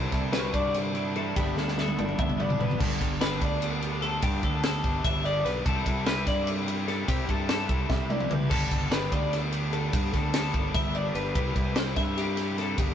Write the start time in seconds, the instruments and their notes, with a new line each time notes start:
Already playing: fingered electric bass C2, overdriven electric guitar C3 G3 C4 E4, clean electric guitar C3 D3 A4
0.12 fingered electric bass C2, overdriven electric guitar G3 C4 E4, clean electric guitar D4, kick, snare, ride
0.31 overdriven electric guitar C3 G3 C4 E4, clean electric guitar F#4 B4, snare, ride
0.53 fingered electric bass G2, clean electric guitar D4 D5, kick, ride
0.74 snare, ride
0.94 overdriven electric guitar G3 C4 E4, clean electric guitar D4, ride
1.14 overdriven electric guitar C3 G3 C4 E4, clean electric guitar E3 A4, ride
1.35 fingered electric bass G1, overdriven electric guitar G2 D3 G3 B3 D4, clean electric guitar G2 D3 G4, kick, ride
1.39 clean electric guitar B3 D4 E4
1.56 fingered electric bass D2, overdriven electric guitar G3 B3 D4, clean electric guitar D4 A4, snare
1.68 snare
1.76 overdriven electric guitar D3 G3 B3 D4, clean electric guitar E4 A4, snare
1.88 high tom
1.98 fingered electric bass G1, clean electric guitar D4, high tom
2.09 mid tom
2.19 fingered electric bass G1, clean electric guitar B3 E5, kick, mid tom
2.30 mid tom
2.38 overdriven electric guitar G3 B3 D4, clean electric guitar B3 D5, mid tom
2.49 clean electric guitar D4, floor tom
2.58 fingered electric bass G1, overdriven electric guitar G2 D3 G3 B3 D4, clean electric guitar D3 B4, floor tom
2.71 floor tom
2.78 fingered electric bass G1, overdriven electric guitar G2 D3 G3 B3 D4 G4, clean electric guitar A4, kick, crash
2.98 fingered electric bass G1, overdriven electric guitar G3 B3 D4 G4, kick, snare, ride
3.19 overdriven electric guitar G3 B3 D4 G4, clean electric guitar B4, snare, ride
3.41 fingered electric bass D2, clean electric guitar D5, kick, ride
3.62 ride
3.81 overdriven electric guitar G3 B3 D4 G4, ride
4.02 overdriven electric guitar G2 D3 G3 B3 D4 G4, clean electric guitar A4, ride
4.22 overdriven electric guitar G2 D3 G3 B3 D4 G4, fingered electric bass G2, clean electric guitar G4, kick, ride
4.42 fingered electric bass D2, overdriven electric guitar G3 B3 D4 G4, clean electric guitar A4, kick, ride
4.62 overdriven electric guitar G3 B3 D4 G4, clean electric guitar A4, snare, ride
4.84 fingered electric bass G1, kick, ride
5.04 fingered electric bass G1, clean electric guitar E5, kick, ride
5.23 overdriven electric guitar G3 B3 D4 G4, clean electric guitar D5, ride
5.43 fingered electric bass B1, overdriven electric guitar G2 D3 G3 B3 D4 G4, clean electric guitar B4, snare, ride
5.64 fingered electric bass C2, overdriven electric guitar C3 G3 C4 E4 G4, clean electric guitar A4, kick, ride
5.85 fingered electric bass C2, overdriven electric guitar C4 E4 G4, kick, ride
6.05 overdriven electric guitar G3 C4 E4 G4, clean electric guitar B4, snare, ride
6.27 fingered electric bass G2, clean electric guitar D5, kick, snare, ride
6.47 ride
6.66 overdriven electric guitar C4 E4 G4, ride
6.87 overdriven electric guitar C3 G3 C4 E4 G4, clean electric guitar A4, snare, ride
7.06 overdriven electric guitar C3 G3 C4 E4 G4, fingered electric bass C3, clean electric guitar G4, kick, ride
7.27 fingered electric bass G2, overdriven electric guitar C4 E4 G4, clean electric guitar A4, kick, ride
7.48 overdriven electric guitar G3 C4 E4 G4, clean electric guitar A4, snare, ride
7.69 fingered electric bass C2, kick, ride
7.90 fingered electric bass C2, clean electric guitar E5, kick, snare
8.09 overdriven electric guitar C4 E4 G4, clean electric guitar D5, high tom
8.20 mid tom
8.29 fingered electric bass C2, overdriven electric guitar C3 G3 C4 E4 G4, clean electric guitar B4, mid tom
8.50 fingered electric bass G1, overdriven electric guitar G2 D3 G3 B3 D4 G4, clean electric guitar A4, kick, crash
8.71 fingered electric bass G1, overdriven electric guitar G3 B3 D4 G4, kick, ride
8.91 overdriven electric guitar G3 B3 D4 G4, clean electric guitar B4, snare, ride
9.12 fingered electric bass D2, clean electric guitar D5, kick, ride
9.33 snare, ride
9.52 overdriven electric guitar G3 B3 D4 G4, ride
9.71 overdriven electric guitar G2 D3 G3 B3 D4 G4, clean electric guitar A4, ride
9.93 overdriven electric guitar G2 D3 G3 B3 D4 G4, fingered electric bass G2, clean electric guitar G4, kick, ride
10.13 fingered electric bass D2, overdriven electric guitar G3 B3 D4 G4, clean electric guitar A4, kick, snare, ride
10.33 overdriven electric guitar G3 B3 D4 G4, clean electric guitar A4, snare, ride
10.54 fingered electric bass G1, kick, ride
10.74 fingered electric bass G1, clean electric guitar E5, kick, ride
10.94 overdriven electric guitar G3 B3 D4 G4, clean electric guitar D5, ride
11.14 fingered electric bass G1, overdriven electric guitar G2 D3 G3 B3 D4 G4, clean electric guitar B4, ride
11.35 fingered electric bass C2, overdriven electric guitar C3 G3 C4 E4 G4, clean electric guitar B4, kick, ride
11.56 fingered electric bass C2, overdriven electric guitar C4 E4 G4, kick, ride
11.75 overdriven electric guitar G3 C4 E4 G4, clean electric guitar C5, snare, ride
11.96 fingered electric bass G2, clean electric guitar E5, kick, snare, ride
12.17 clean electric guitar G4, snare, ride
12.35 overdriven electric guitar C4 E4 G4, snare, ride
12.55 overdriven electric guitar C3 G3 C4 E4 G4, clean electric guitar A4, snare, ride
12.77 fingered electric bass G1, overdriven electric guitar G2 D3 G3 B3 D4 G4, clean electric guitar G4, kick, ride